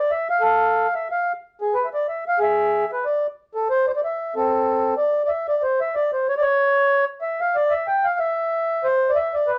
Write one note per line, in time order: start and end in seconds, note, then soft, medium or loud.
0.00 0.11 D5 medium
0.11 0.28 E5 medium
0.30 0.43 F5 medium
0.41 0.87 A4 medium
0.41 0.94 F5 medium
0.94 1.08 E5 medium
1.11 1.32 F5 medium
1.61 1.74 G#4 medium
1.74 1.86 B4 medium
1.85 1.89 E5 medium
1.94 2.07 D5 medium
2.08 2.24 E5 medium
2.28 2.39 F5 loud
2.39 2.85 G#4 medium
2.39 2.91 E5 loud
2.93 3.05 B4 medium
3.05 3.27 D5 medium
3.55 3.68 A4 medium
3.70 3.86 C5 medium
3.89 3.92 C5 medium
3.96 4.01 D5 medium
4.04 4.34 E5 medium
4.36 4.94 C4 soft
4.36 4.95 A4 medium
4.98 5.23 D5 medium
5.25 5.30 D5 medium
5.25 5.47 E5 medium
5.48 5.63 D5 medium
5.63 5.80 C5 medium
5.81 5.95 E5 medium
5.95 6.11 D5 medium
6.13 6.27 C5 medium
6.29 6.34 C#5 medium
6.38 6.43 D5 medium
6.42 7.05 C#5 loud
7.21 7.40 E5 medium
7.41 7.56 F5 medium
7.56 7.74 D5 medium
7.70 7.87 E5 loud
7.88 8.06 G5 medium
8.04 8.19 F5 medium
8.19 8.87 E5 loud
8.84 9.11 C5 medium
9.09 9.18 D5 medium
9.16 9.35 E5 loud
9.34 9.51 D5 medium
9.47 9.58 B4 medium